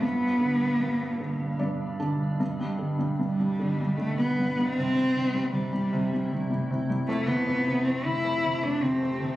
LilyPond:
<<
  \new Staff \with { instrumentName = "Cello" } { \time 3/4 \key g \mixolydian \tempo 4 = 77 b2 r4 | r4 g4 a16 b8. | c'4 g4. r8 | a16 b8. c'16 e'8. d'16 c'8. | }
  \new Staff \with { instrumentName = "Ambient pad" } { \clef bass \time 3/4 \key g \mixolydian << { <b, d'>2. | <b, d'>2. | <c e'>2. | <f g'>2. | } \\ { g2. | g2. | a2.~ | a2. | } >> }
  \new Staff \with { instrumentName = "Felt piano" } { \clef bass \time 3/4 \key g \mixolydian g,8 d8 g,8 d8 <g, d''>8 <d a''>8 | g,16 g16 d16 g16 g,16 g16 d16 g16 d16 g16 g,16 g16 | c16 g16 c16 g16 c16 g16 c16 g16 c16 g16 c16 g16 | f,16 c16 f,16 c16 f,16 c16 f,16 c16 f,16 c16 f,16 c16 | }
>>